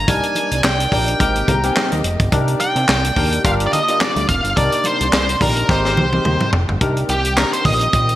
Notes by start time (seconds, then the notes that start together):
Already playing: A#3
0.08 C2 C3 D#3 G3 D4 D#4 A#4 D5 G#5, kick, closed hi-hat, muted conga
0.23 closed hi-hat
0.35 closed hi-hat, muted conga
0.51 C2, closed hi-hat
0.64 C2 G5, snare, clap, high conga
0.80 closed hi-hat
0.92 A#1 D4 D#4 G4 A#4, kick, open hi-hat
1.08 closed hi-hat
1.20 G#1 C3 G#3 A#3 C4 D#4 G4 A#4, kick, closed hi-hat, muted conga
1.36 closed hi-hat
1.48 C2 A#5, kick, closed hi-hat, low conga
1.63 C4 D#4 G4 A#4 G#5, closed hi-hat
1.76 G5, snare, clap, high conga
1.92 D#2 D#5, closed hi-hat, high conga
2.04 F1, closed hi-hat
2.20 G1, kick, closed hi-hat
2.32 C2 D#3 A#3 D4 D#4 G4 A#4 D5, kick, closed hi-hat, muted conga
2.48 closed hi-hat
2.60 G5, closed hi-hat, muted conga
2.76 C3, closed hi-hat
2.89 C2, snare, clap, high conga
3.04 closed hi-hat
3.16 D#2 D4 D#4 G4 A#4, kick, open hi-hat
3.32 closed hi-hat
3.44 G1 D3 G3 D4 F4 G4 A#4 F5, kick, closed hi-hat
3.60 closed hi-hat
3.67 D5
3.73 D#5, closed hi-hat, low conga
3.88 D4 F4 G4 A#4, closed hi-hat
4.01 D5, snare, clap, high conga
4.16 D2, closed hi-hat, high conga
4.28 F1 F5, kick, closed hi-hat
4.44 G1, closed hi-hat
4.57 C2 C3 D#3 D4 D#4 G4 A#4 D5, kick, closed hi-hat, muted conga
4.72 closed hi-hat
4.84 C5, closed hi-hat, muted conga
5.01 C2, closed hi-hat
5.13 C2 C5, snare, clap, high conga
5.29 closed hi-hat
5.41 A#1 D4 D#4 G4 A#4, kick, open hi-hat, low conga
5.57 closed hi-hat
5.69 G#1 G#3 C4 D#4 G4 A#4 C5, kick, snare
5.85 snare
5.97 C2, high tom, low conga
6.12 C4 D#4 G4 A#4, high tom
6.25 D#2, mid tom, high conga
6.41 mid tom, high conga
6.53 F1, floor tom
6.69 G1, floor tom
6.81 C2 D#3 A#3 C4 D4 D#4 G4 A#4, kick, closed hi-hat, muted conga
6.97 closed hi-hat
7.09 C2 G4, closed hi-hat, muted conga
7.25 closed hi-hat
7.37 D4 D#4 G4 A#4, snare, clap, high conga
7.53 C5, closed hi-hat
7.65 A#1 D#5, kick, open hi-hat, low conga
7.81 closed hi-hat
7.93 A#1, kick, closed hi-hat, muted conga
8.09 closed hi-hat